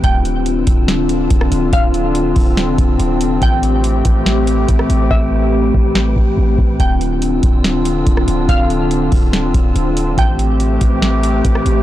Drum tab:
HH |x-x-x-x-x-x-x-x-|x-x-x-o-x-x-x-x-|x-x-x-x-x-x-x-x-|----------------|
SD |--------o----r--|--------o-------|--------o----r--|--------o-------|
BD |o-----o-----o---|o-----o---o-----|o-----o-----o---|o-----o---o---o-|

HH |x-x-x-x-x-x-x-x-|x-x-x-o-x-x-x-x-|x-x-x-x-x-x-x-x-|
SD |--------o----r--|--------o-------|--------o----r--|
BD |o-----o-----o---|o-----o---o-----|o-----o-----o---|